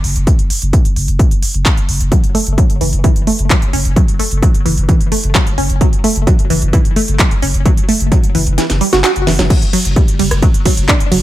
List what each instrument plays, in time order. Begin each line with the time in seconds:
0.04 sub bass F#1, open hi-hat
0.16 sub bass F#1, closed hi-hat
0.27 kick, closed hi-hat
0.39 sub bass F#1, closed hi-hat
0.50 open hi-hat
0.62 sub bass F#1, closed hi-hat
0.73 kick, closed hi-hat
0.85 sub bass F#1, closed hi-hat
0.96 sub bass F#1, open hi-hat
1.08 sub bass F#1, closed hi-hat
1.19 kick, closed hi-hat
1.31 sub bass F#1, closed hi-hat
1.43 open hi-hat
1.54 sub bass F#1, closed hi-hat
1.66 kick, clap, closed hi-hat
1.77 sub bass F#1, closed hi-hat
1.89 sub bass F#1, open hi-hat
2.00 sub bass F#1, closed hi-hat
2.12 synth arpeggio sound F#3, kick, closed hi-hat
2.24 sub bass F#1, closed hi-hat
2.35 synth arpeggio sound A3, open hi-hat
2.47 sub bass F#1, closed hi-hat
2.58 synth arpeggio sound F#3, kick, closed hi-hat
2.70 sub bass F#1, closed hi-hat
2.81 sub bass F#1, synth arpeggio sound E3, open hi-hat
2.93 sub bass F#1, closed hi-hat
3.04 synth arpeggio sound E3, kick, closed hi-hat
3.16 sub bass F#1, closed hi-hat
3.27 synth arpeggio sound A3, open hi-hat
3.39 sub bass F#1, closed hi-hat
3.50 synth arpeggio sound F#3, kick, clap, closed hi-hat
3.62 sub bass F#1, closed hi-hat
3.73 sub bass F#1, synth arpeggio sound C#4, open hi-hat
3.85 sub bass F#1, closed hi-hat
3.96 synth arpeggio sound F#3, kick, closed hi-hat
4.08 sub bass F#1, closed hi-hat
4.19 synth arpeggio sound A3, open hi-hat
4.31 sub bass F#1, closed hi-hat
4.42 synth arpeggio sound F#3, kick, closed hi-hat
4.54 sub bass F#1, closed hi-hat
4.66 sub bass F#1, synth arpeggio sound E3, open hi-hat
4.77 sub bass F#1, closed hi-hat
4.89 synth arpeggio sound E3, kick, closed hi-hat
5.01 sub bass F#1, closed hi-hat
5.12 synth arpeggio sound A3, open hi-hat
5.24 sub bass F#1, closed hi-hat
5.35 synth arpeggio sound F#3, kick, clap, closed hi-hat
5.47 sub bass F#1, closed hi-hat
5.58 sub bass F#1, synth arpeggio sound C#4, open hi-hat
5.70 sub bass F#1, closed hi-hat
5.81 synth arpeggio sound F#3, kick, closed hi-hat
5.93 sub bass F#1, closed hi-hat
6.04 synth arpeggio sound A3, open hi-hat
6.16 sub bass F#1, closed hi-hat
6.27 synth arpeggio sound F#3, kick, closed hi-hat
6.39 sub bass F#1, closed hi-hat
6.50 sub bass F#1, synth arpeggio sound E3, open hi-hat
6.62 sub bass F#1, closed hi-hat
6.73 synth arpeggio sound E3, kick, closed hi-hat
6.85 sub bass F#1, closed hi-hat
6.96 synth arpeggio sound A3, open hi-hat
7.08 sub bass F#1, closed hi-hat
7.19 synth arpeggio sound F#3, kick, clap, closed hi-hat
7.31 sub bass F#1, closed hi-hat
7.42 sub bass F#1, synth arpeggio sound C#4, open hi-hat
7.54 sub bass F#1, closed hi-hat
7.66 synth arpeggio sound F#3, kick, closed hi-hat
7.77 sub bass F#1, closed hi-hat
7.89 synth arpeggio sound A3, open hi-hat
8.00 sub bass F#1, closed hi-hat
8.12 synth arpeggio sound F#3, kick, closed hi-hat
8.24 sub bass F#1, closed hi-hat
8.35 sub bass F#1, synth arpeggio sound E3, open hi-hat
8.47 sub bass F#1, closed hi-hat
8.58 synth arpeggio sound E3, snare, closed hi-hat
8.70 sub bass F#1, snare, closed hi-hat
8.81 synth arpeggio sound G3, open hi-hat
8.93 sub bass F#1, synth arpeggio sound F#4, snare, closed hi-hat
9.04 synth arpeggio sound F#4, snare, clap, closed hi-hat
9.16 sub bass F#1, closed hi-hat
9.27 sub bass F#1, synth arpeggio sound E3, snare, open hi-hat
9.39 sub bass F#1, synth arpeggio sound F#3, snare, closed hi-hat
9.50 synth arpeggio sound F#3, kick, closed hi-hat, crash
9.62 sub bass F#1, closed hi-hat
9.73 synth arpeggio sound F#3, open hi-hat, ride
9.85 sub bass F#1, closed hi-hat
9.96 synth arpeggio sound G3, kick, closed hi-hat
10.08 sub bass F#1, closed hi-hat
10.19 sub bass F#1, synth arpeggio sound G3, open hi-hat, ride
10.31 sub bass F#1, cross-stick, closed hi-hat
10.42 synth arpeggio sound F#3, kick, closed hi-hat
10.54 sub bass F#1, closed hi-hat
10.66 synth arpeggio sound F#3, kick, open hi-hat, ride
10.77 sub bass F#1, closed hi-hat
10.89 synth arpeggio sound D4, kick, clap, closed hi-hat
11.00 sub bass F#1, closed hi-hat
11.12 sub bass F#1, synth arpeggio sound F#3, open hi-hat, ride